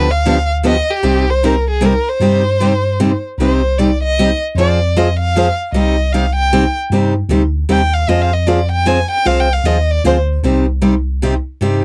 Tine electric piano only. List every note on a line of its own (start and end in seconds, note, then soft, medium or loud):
0.00 0.80 D2 medium
1.03 1.97 C2 medium
2.20 3.14 G2 medium
3.37 4.32 C2 medium
4.55 5.50 F2 medium
5.73 6.67 C2 medium
6.90 7.22 G2 medium
7.29 7.63 D2 medium
7.69 8.03 D#2 medium
8.08 9.03 F2 medium
9.26 9.58 C2 medium
9.64 9.98 D#2 medium
10.04 10.38 D2 medium
10.44 11.38 C2 medium
11.61 11.85 G2 medium